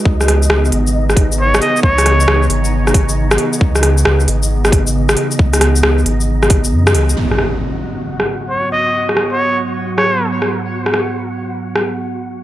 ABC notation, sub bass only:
X:1
M:4/4
L:1/16
Q:"Swing 16ths" 1/4=135
K:G#m
V:1 name="Sub bass" clef=bass
C,,4 C,,2 G,,,8 z2 | C,,4 C,,2 G,,,8 z2 | C,,4 C,,2 G,,,8 z2 | C,,4 C,,2 G,,,4- G,,, G,,, F,,2 C,,2 |
z16 | z16 | z16 |]